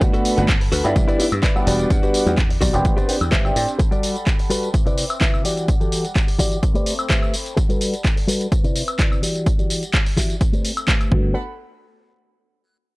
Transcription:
0.01 G1 A3 B3 D4 F#4 A4 F#5 B5, muted clean electric guitar stroke, kick, closed hi-hat, tambourine
0.13 F#4 A4 B4, closed hi-hat, tambourine
0.25 open hi-hat, tambourine
0.37 G1 A3 B3 D4 F#4, closed hi-hat, tambourine
0.49 kick, clap, closed hi-hat, tambourine
0.61 muted clean electric guitar stroke, open hi-hat, tambourine
0.72 D2 F#4 A4 B4, open hi-hat, tambourine
0.84 G2 G3 B3 D4 E4, closed hi-hat, tambourine
0.96 C2 B4 E5 D6, kick, closed hi-hat, tambourine
1.08 E4 B4 D5, closed hi-hat, tambourine
1.19 G3 B3 D4 E4, open hi-hat, tambourine
1.32 G2, closed hi-hat, tambourine, high woodblock
1.42 E4 B4 D5, kick, clap, closed hi-hat, tambourine
1.55 G3 B3 D4 F#4, tambourine, high woodblock
1.66 E1 G3 F#4 G4 D5 F#5, open hi-hat, tambourine
1.79 closed hi-hat, tambourine
1.90 E2 G3 B3 D4 F#5, kick, closed hi-hat, tambourine
2.02 F#4 G4 B4, closed hi-hat, tambourine
2.14 open hi-hat, tambourine
2.26 E2 G3 B3 D4 F#4, closed hi-hat, tambourine
2.38 kick, clap, closed hi-hat, tambourine
2.50 muted clean electric guitar stroke, open hi-hat, tambourine
2.61 B1 F#4 G4 D5, kick, open hi-hat, tambourine
2.73 E1 B3 C4 D4 G4, closed hi-hat, tambourine
2.85 A1 D5 G5, kick, closed hi-hat, tambourine
2.97 G4 B4 C5 D5, closed hi-hat, tambourine
3.08 B3 C4 D4 G4, open hi-hat, tambourine
3.21 E2, closed hi-hat, tambourine, high woodblock
3.31 G1 G4 B4 C5 E5, kick, clap, closed hi-hat, tambourine
3.44 C4 D4 G4, tambourine, high woodblock
3.56 A2, open hi-hat, tambourine
3.69 closed hi-hat, tambourine
3.79 G3 A4 F#5 B5, muted clean electric guitar stroke, kick, closed hi-hat, tambourine
3.91 G3 F#4 A4 D5, closed hi-hat, tambourine
4.03 open hi-hat, tambourine
4.16 closed hi-hat, tambourine
4.27 kick, clap, closed hi-hat, tambourine
4.38 muted clean electric guitar stroke, open hi-hat, tambourine
4.50 G3 F#4 A4 B4, open hi-hat, tambourine
4.63 closed hi-hat, tambourine
4.74 C4 B4 E5 D6, kick, closed hi-hat, tambourine
4.86 C3 E4 B4 D5, closed hi-hat, tambourine
4.98 open hi-hat, tambourine
5.10 closed hi-hat, tambourine, high woodblock
5.20 C3 E4 B4 E5, kick, clap, closed hi-hat, tambourine
5.34 tambourine, high woodblock
5.44 E3 G3 F#4 G4 D5 F#5, open hi-hat, tambourine
5.57 closed hi-hat, tambourine
5.68 kick, closed hi-hat, tambourine
5.80 E3 F#4 G4 A4, closed hi-hat, tambourine
5.92 open hi-hat, tambourine
6.05 closed hi-hat, tambourine
6.16 kick, clap, closed hi-hat, tambourine
6.27 muted clean electric guitar stroke, open hi-hat, tambourine
6.39 E3 F#4 G4 D5, kick, open hi-hat, tambourine
6.52 closed hi-hat, tambourine
6.63 A3 C4 G5 B5, kick, closed hi-hat, tambourine
6.74 A3 G4 B4 C5 D5, closed hi-hat, tambourine
6.86 open hi-hat, tambourine
6.99 closed hi-hat, tambourine, high woodblock
7.09 A3 G4 B4 C5 E5, kick, clap, closed hi-hat, tambourine
7.22 tambourine, high woodblock
7.34 open hi-hat, tambourine
7.46 closed hi-hat, tambourine
7.57 G3 A4 F#5, muted clean electric guitar stroke, kick, closed hi-hat, tambourine
7.69 G3 F#4 A4 B4, closed hi-hat, tambourine
7.81 open hi-hat, tambourine
7.94 closed hi-hat, tambourine
8.05 kick, clap, closed hi-hat, tambourine
8.16 muted clean electric guitar stroke, open hi-hat, tambourine
8.27 G3 F#4 A4 B4, open hi-hat, tambourine
8.41 closed hi-hat, tambourine
8.52 C4 B4 E5 D6, kick, closed hi-hat, tambourine
8.64 C3 E4 B4 D5, closed hi-hat, tambourine
8.76 open hi-hat, tambourine
8.88 closed hi-hat, tambourine, high woodblock
8.98 C3 E4 B4 D5, kick, clap, closed hi-hat, tambourine
9.12 tambourine, high woodblock
9.22 E3 G3 F#4 G4 D5 F#5 D6, open hi-hat, tambourine
9.35 closed hi-hat, tambourine
9.46 kick, closed hi-hat, tambourine
9.58 E3 F#4 G4 D5, closed hi-hat, tambourine
9.70 open hi-hat, tambourine
9.83 closed hi-hat, tambourine
9.94 kick, clap, closed hi-hat, tambourine
10.05 muted clean electric guitar stroke, open hi-hat, tambourine
10.17 E3 F#4 G4 E5, kick, clap, open hi-hat, tambourine
10.30 closed hi-hat, tambourine
10.41 A3 C4 G5 B5, kick, closed hi-hat, tambourine
10.53 A3 G4 B4 C5 D5, closed hi-hat, tambourine
10.65 open hi-hat, tambourine
10.77 closed hi-hat, tambourine, high woodblock
10.87 A3 G4 B4 C5 E5, kick, clap, closed hi-hat, tambourine
11.01 closed hi-hat, tambourine, high woodblock
11.11 G1 A3 B3 D4 F#4 A4 B4 F#5 B5, kick

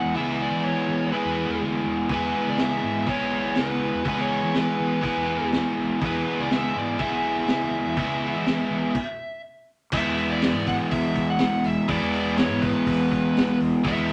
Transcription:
Already playing: E3 G#3 B3 E4 G#4 F#5
0.03 E2
0.14 C#2 E3 G#3 B3 E4 G#4 E5
0.42 D5
0.51 E3
0.65 C#5
0.88 E3
1.12 E3 G#3 B3 E4 B4
1.16 G#4
1.25 E2
1.49 E2
1.61 D2
1.85 E2
2.09 E2 E3 G#3 B3 B4, kick, open hi-hat
2.13 E4 G#4
2.47 C#2 D5
2.58 E5, snare, open hi-hat
2.83 G#2
3.06 E3 G#3 B3 E4 G#4 C#5, kick, open hi-hat
3.20 B1
3.55 C#2 B4, snare, open hi-hat
3.94 E2
4.04 C#2 E3 G#3 B3 E4 G#4, kick, open hi-hat
4.08 B4
4.21 C#5
4.43 E3
4.54 B4, snare, open hi-hat
4.80 E3
5.01 E3 G#3 B3 E4 G#4, kick, open hi-hat
5.17 E2
5.41 E2
5.52 snare, open hi-hat
5.78 B1
6.01 E2 E3 G#3 B3 E4, kick, open hi-hat
6.05 G#4 B4
6.39 C#2 D5
6.51 E5, snare, open hi-hat
6.75 G#2 D5
6.99 E3 G#3 B3 E4 G#4 E5, kick, open hi-hat
7.12 B1
7.48 C#2, snare, open hi-hat
7.85 E2
7.97 C#2 E3 G#3 B3 E4 G#4, kick, open hi-hat
8.34 E3
8.46 snare, open hi-hat
8.71 E3
8.95 kick, crash
9.92 E2 E3 G#3 B3 E5, kick, crash
9.97 E4
10.06 E2
10.17 open hi-hat
10.31 D5
10.42 snare, open hi-hat
10.55 G#2
10.67 F#5, kick, open hi-hat
10.91 E2 E5, kick, open hi-hat
11.16 kick, open hi-hat
11.30 F#5
11.39 B1, snare, open hi-hat
11.64 E2 E5, open hi-hat
11.88 E2 E3 G#3 B3 E4 D5, kick, open hi-hat
12.02 E2
12.13 open hi-hat
12.38 C#5, snare, open hi-hat
12.50 G#2
12.62 B4, kick, open hi-hat
12.86 E2, kick, open hi-hat
13.12 kick, open hi-hat
13.37 B1, snare, open hi-hat
13.60 E2, open hi-hat
13.84 E2 E3 G#3 B3, kick, open hi-hat
13.88 E4 E5
13.98 E2
14.09 open hi-hat

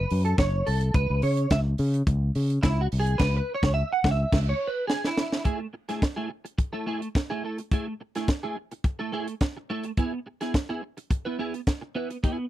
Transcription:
Already playing: B4
0.10 F#2, open hi-hat
0.25 A4, closed hi-hat
0.38 F#1 C#5, kick, snare, closed hi-hat
0.67 C2 A4, open hi-hat
0.81 closed hi-hat
0.94 C#2 B4, kick, closed hi-hat
1.10 C#2
1.22 C#3 C#5, open hi-hat
1.37 closed hi-hat
1.50 C#2 E5, kick, snare, closed hi-hat
1.78 C#3, open hi-hat
1.94 closed hi-hat
2.07 C#2, kick, closed hi-hat
2.35 C#3, open hi-hat
2.50 closed hi-hat
2.63 C#2 E4, kick, snare, closed hi-hat
2.81 F#4
2.92 C2, open hi-hat
3.00 G#4
3.06 closed hi-hat
3.18 C#2 B4, kick, snare, crash
3.37 B4
3.55 C#5
3.63 C#2, kick, snare
3.74 E5
3.93 F#5
4.04 C#2, kick, snare
4.11 E5
4.32 C#2, kick, snare, crash
4.49 C#5
4.67 B4
4.87 G#4, snare
5.04 E4, snare
5.17 snare
5.32 snare
5.44 A3 E4 G#4, kick, closed hi-hat
5.60 muted clean electric guitar stroke
5.73 muted clean electric guitar stroke
5.89 A3 E4 G#4, snare, closed hi-hat
6.02 muted clean electric guitar stroke, kick, snare, closed hi-hat
6.16 A3 E4 G#4
6.30 muted clean electric guitar stroke
6.45 muted clean electric guitar stroke, closed hi-hat
6.58 muted clean electric guitar stroke, kick, closed hi-hat
6.73 A3 E4 A4
6.86 A3 E4 G#4
7.01 muted clean electric guitar stroke, closed hi-hat
7.15 muted clean electric guitar stroke, kick, snare, closed hi-hat
7.30 A3 E4 G#4
7.44 A3 E4 A4
7.58 muted clean electric guitar stroke, closed hi-hat
7.71 A3 E4 G#4, kick, closed hi-hat
7.87 muted clean electric guitar stroke
8.01 muted clean electric guitar stroke
8.15 A3 E4 G#4, snare, closed hi-hat
8.28 muted clean electric guitar stroke, kick, snare, closed hi-hat
8.43 A3 E4 G#4
8.57 muted clean electric guitar stroke
8.71 muted clean electric guitar stroke, closed hi-hat
8.84 muted clean electric guitar stroke, kick, closed hi-hat
8.99 A3 E4 A4
9.12 A3 E4 G#4
9.28 muted clean electric guitar stroke, closed hi-hat
9.41 muted clean electric guitar stroke, kick, snare, closed hi-hat
9.57 muted clean electric guitar stroke
9.70 A3 E4 A4
9.83 muted clean electric guitar stroke, closed hi-hat
9.97 B3 E4 G#4, kick, closed hi-hat
10.13 muted clean electric guitar stroke
10.26 muted clean electric guitar stroke
10.41 B3 E4 G#4, snare, closed hi-hat
10.54 muted clean electric guitar stroke, kick, snare, closed hi-hat
10.69 B3 E4 G#4
10.82 muted clean electric guitar stroke
10.97 muted clean electric guitar stroke, closed hi-hat
11.11 muted clean electric guitar stroke, kick, closed hi-hat
11.25 B3 E4 B4
11.39 B3 E4 G#4
11.54 muted clean electric guitar stroke, closed hi-hat
11.67 kick, snare, closed hi-hat
11.81 muted clean electric guitar stroke
11.95 B3 E4 B4
12.10 muted clean electric guitar stroke, closed hi-hat
12.23 B3 E4 G#4, kick, closed hi-hat
12.38 muted clean electric guitar stroke

